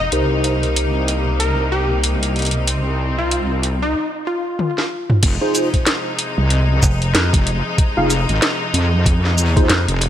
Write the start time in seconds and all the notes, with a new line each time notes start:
Already playing: D#4
0.12 C2 C3 G3 A#3 D#4 G4 A#4 C5, closed hi-hat
0.44 closed hi-hat
0.63 closed hi-hat
0.76 closed hi-hat
1.08 closed hi-hat
1.40 A#4, closed hi-hat
1.72 G4
2.04 closed hi-hat
2.23 closed hi-hat
2.36 closed hi-hat
2.39 closed hi-hat
2.42 closed hi-hat
2.45 closed hi-hat
2.51 closed hi-hat
2.67 C4, closed hi-hat
3.18 F4
3.31 closed hi-hat
3.63 closed hi-hat
3.82 D#4
4.27 F4
4.59 high tom
4.78 snare
5.10 mid tom
5.23 F1 C3 F3 G#3 D#4, kick, closed hi-hat, crash
5.41 D#4 F4 G#4 C5
5.55 closed hi-hat, shaker
5.74 kick, closed hi-hat
5.87 snare, closed hi-hat
6.19 closed hi-hat
6.38 C2
6.50 closed hi-hat
6.82 F1, kick, shaker
7.02 closed hi-hat
7.14 F2, snare, closed hi-hat
7.33 F1, kick, closed hi-hat
7.47 closed hi-hat
7.78 kick, closed hi-hat
7.97 F1 D#4 F4 G#4 F5
8.10 closed hi-hat, shaker
8.29 G#1, closed hi-hat
8.42 cross-stick, snare, closed hi-hat
8.74 F2, closed hi-hat
9.06 kick, closed hi-hat
9.25 snare
9.38 E2, shaker
9.56 D#4 F4 G#4 C5, kick, closed hi-hat
9.70 F2, snare, closed hi-hat
9.88 F1, closed hi-hat
10.01 cross-stick, closed hi-hat